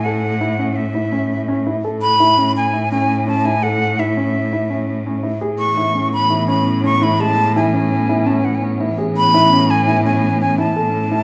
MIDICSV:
0, 0, Header, 1, 5, 480
1, 0, Start_track
1, 0, Tempo, 356718
1, 81, Time_signature, 5, 2, 24, 8
1, 15112, End_track
2, 0, Start_track
2, 0, Title_t, "Flute"
2, 0, Program_c, 0, 73
2, 38, Note_on_c, 0, 78, 85
2, 1020, Note_on_c, 0, 76, 74
2, 1040, Note_off_c, 0, 78, 0
2, 2232, Note_off_c, 0, 76, 0
2, 2716, Note_on_c, 0, 83, 111
2, 3390, Note_off_c, 0, 83, 0
2, 3455, Note_on_c, 0, 80, 88
2, 3897, Note_off_c, 0, 80, 0
2, 3927, Note_on_c, 0, 80, 83
2, 4373, Note_off_c, 0, 80, 0
2, 4409, Note_on_c, 0, 81, 88
2, 4651, Note_on_c, 0, 80, 90
2, 4671, Note_off_c, 0, 81, 0
2, 4884, Note_on_c, 0, 78, 90
2, 4904, Note_off_c, 0, 80, 0
2, 5374, Note_on_c, 0, 76, 72
2, 5394, Note_off_c, 0, 78, 0
2, 6812, Note_off_c, 0, 76, 0
2, 7519, Note_on_c, 0, 85, 102
2, 8194, Note_off_c, 0, 85, 0
2, 8254, Note_on_c, 0, 83, 92
2, 8699, Note_off_c, 0, 83, 0
2, 8722, Note_on_c, 0, 83, 88
2, 9172, Note_off_c, 0, 83, 0
2, 9213, Note_on_c, 0, 85, 95
2, 9462, Note_on_c, 0, 83, 85
2, 9483, Note_off_c, 0, 85, 0
2, 9695, Note_on_c, 0, 81, 95
2, 9716, Note_off_c, 0, 83, 0
2, 10167, Note_off_c, 0, 81, 0
2, 10175, Note_on_c, 0, 80, 70
2, 11126, Note_on_c, 0, 81, 62
2, 11146, Note_off_c, 0, 80, 0
2, 11253, Note_on_c, 0, 80, 59
2, 11274, Note_off_c, 0, 81, 0
2, 11369, Note_on_c, 0, 78, 61
2, 11389, Note_off_c, 0, 80, 0
2, 11504, Note_on_c, 0, 80, 67
2, 11524, Note_off_c, 0, 78, 0
2, 11618, Note_off_c, 0, 80, 0
2, 12339, Note_on_c, 0, 83, 112
2, 13057, Note_on_c, 0, 80, 96
2, 13077, Note_off_c, 0, 83, 0
2, 13518, Note_off_c, 0, 80, 0
2, 13526, Note_on_c, 0, 80, 82
2, 13972, Note_off_c, 0, 80, 0
2, 14010, Note_on_c, 0, 80, 89
2, 14231, Note_off_c, 0, 80, 0
2, 14248, Note_on_c, 0, 81, 83
2, 15112, Note_off_c, 0, 81, 0
2, 15112, End_track
3, 0, Start_track
3, 0, Title_t, "Grand piano"
3, 0, Program_c, 1, 0
3, 72, Note_on_c, 1, 69, 71
3, 432, Note_off_c, 1, 69, 0
3, 551, Note_on_c, 1, 64, 80
3, 734, Note_off_c, 1, 64, 0
3, 792, Note_on_c, 1, 61, 70
3, 1153, Note_off_c, 1, 61, 0
3, 1269, Note_on_c, 1, 64, 64
3, 1452, Note_off_c, 1, 64, 0
3, 1510, Note_on_c, 1, 61, 72
3, 1872, Note_off_c, 1, 61, 0
3, 1996, Note_on_c, 1, 61, 80
3, 2177, Note_off_c, 1, 61, 0
3, 2242, Note_on_c, 1, 64, 70
3, 2421, Note_off_c, 1, 64, 0
3, 2481, Note_on_c, 1, 69, 73
3, 2839, Note_off_c, 1, 69, 0
3, 2962, Note_on_c, 1, 64, 78
3, 3141, Note_off_c, 1, 64, 0
3, 3198, Note_on_c, 1, 61, 64
3, 3558, Note_off_c, 1, 61, 0
3, 3679, Note_on_c, 1, 64, 64
3, 3860, Note_off_c, 1, 64, 0
3, 3928, Note_on_c, 1, 61, 77
3, 4285, Note_off_c, 1, 61, 0
3, 4396, Note_on_c, 1, 61, 77
3, 4578, Note_off_c, 1, 61, 0
3, 4647, Note_on_c, 1, 64, 74
3, 4825, Note_off_c, 1, 64, 0
3, 4885, Note_on_c, 1, 69, 76
3, 5243, Note_off_c, 1, 69, 0
3, 5370, Note_on_c, 1, 64, 71
3, 5548, Note_off_c, 1, 64, 0
3, 5611, Note_on_c, 1, 61, 70
3, 5967, Note_off_c, 1, 61, 0
3, 6093, Note_on_c, 1, 64, 69
3, 6270, Note_off_c, 1, 64, 0
3, 6326, Note_on_c, 1, 61, 68
3, 6684, Note_off_c, 1, 61, 0
3, 6813, Note_on_c, 1, 61, 71
3, 6990, Note_off_c, 1, 61, 0
3, 7041, Note_on_c, 1, 64, 67
3, 7223, Note_off_c, 1, 64, 0
3, 7284, Note_on_c, 1, 68, 75
3, 7643, Note_off_c, 1, 68, 0
3, 7769, Note_on_c, 1, 64, 77
3, 7948, Note_off_c, 1, 64, 0
3, 8008, Note_on_c, 1, 61, 59
3, 8365, Note_off_c, 1, 61, 0
3, 8482, Note_on_c, 1, 64, 74
3, 8664, Note_off_c, 1, 64, 0
3, 8718, Note_on_c, 1, 61, 78
3, 9079, Note_off_c, 1, 61, 0
3, 9202, Note_on_c, 1, 61, 78
3, 9384, Note_off_c, 1, 61, 0
3, 9443, Note_on_c, 1, 64, 76
3, 9624, Note_off_c, 1, 64, 0
3, 9685, Note_on_c, 1, 56, 84
3, 10044, Note_off_c, 1, 56, 0
3, 10177, Note_on_c, 1, 64, 84
3, 10353, Note_off_c, 1, 64, 0
3, 10412, Note_on_c, 1, 61, 70
3, 10768, Note_off_c, 1, 61, 0
3, 10890, Note_on_c, 1, 64, 78
3, 11068, Note_off_c, 1, 64, 0
3, 11118, Note_on_c, 1, 61, 84
3, 11479, Note_off_c, 1, 61, 0
3, 11605, Note_on_c, 1, 61, 76
3, 11785, Note_off_c, 1, 61, 0
3, 11848, Note_on_c, 1, 64, 77
3, 12027, Note_off_c, 1, 64, 0
3, 12088, Note_on_c, 1, 68, 74
3, 12445, Note_off_c, 1, 68, 0
3, 12572, Note_on_c, 1, 64, 86
3, 12749, Note_off_c, 1, 64, 0
3, 12816, Note_on_c, 1, 61, 77
3, 13170, Note_off_c, 1, 61, 0
3, 13290, Note_on_c, 1, 64, 73
3, 13467, Note_off_c, 1, 64, 0
3, 13526, Note_on_c, 1, 61, 77
3, 13883, Note_off_c, 1, 61, 0
3, 14003, Note_on_c, 1, 61, 68
3, 14182, Note_off_c, 1, 61, 0
3, 14240, Note_on_c, 1, 64, 76
3, 14420, Note_off_c, 1, 64, 0
3, 14480, Note_on_c, 1, 69, 70
3, 14838, Note_off_c, 1, 69, 0
3, 14956, Note_on_c, 1, 64, 75
3, 15112, Note_off_c, 1, 64, 0
3, 15112, End_track
4, 0, Start_track
4, 0, Title_t, "Ambient pad"
4, 0, Program_c, 2, 92
4, 7278, Note_on_c, 2, 59, 68
4, 7281, Note_on_c, 2, 52, 68
4, 7281, Note_on_c, 2, 61, 79
4, 14426, Note_off_c, 2, 59, 0
4, 14427, Note_off_c, 2, 52, 0
4, 14489, Note_on_c, 2, 57, 61
4, 14491, Note_on_c, 2, 59, 74
4, 15112, Note_off_c, 2, 57, 0
4, 15112, Note_off_c, 2, 59, 0
4, 15112, Note_off_c, 2, 61, 0
4, 15112, End_track
5, 0, Start_track
5, 0, Title_t, "Cello"
5, 0, Program_c, 3, 42
5, 0, Note_on_c, 3, 45, 70
5, 2480, Note_off_c, 3, 45, 0
5, 2480, Note_on_c, 3, 45, 77
5, 7299, Note_off_c, 3, 45, 0
5, 7299, Note_on_c, 3, 45, 77
5, 12094, Note_off_c, 3, 45, 0
5, 12094, Note_on_c, 3, 45, 84
5, 14490, Note_off_c, 3, 45, 0
5, 14490, Note_on_c, 3, 45, 75
5, 15112, Note_off_c, 3, 45, 0
5, 15112, End_track
0, 0, End_of_file